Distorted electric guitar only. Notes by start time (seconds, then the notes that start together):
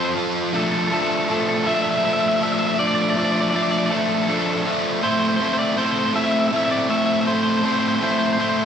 Already playing: F3 C4 F4 A4
0.15 F3 C4 F4 A4
0.53 F3 A3 D4 A4
0.91 F3 A3 D4 A4
1.28 F3 A3 D4 A4
1.65 F3 A3 D4 A4
2.03 F3 A3 D4 A4
2.40 F3 A3 D4 A4
2.78 F3 A3 D4 A4
3.16 F3 A3 D4 A4
3.53 F3 A3 D4 A4
3.91 F3 A3 D4 A4
4.28 F3 A3 D4 A4
4.66 F3 A3 D4 A4
5.02 A3 C4 E4 A4
5.40 A3 C4 E4 A4
5.77 A3 C4 E4 A4
6.14 A3 C4 E4 A4
6.51 A3 C4 E4 A4
6.89 A3 C4 E4 A4
7.26 A3 C4 E4 A4
7.63 A3 C4 E4 A4
8.01 A3 C4 E4 A4
8.38 A3 C4 E4 A4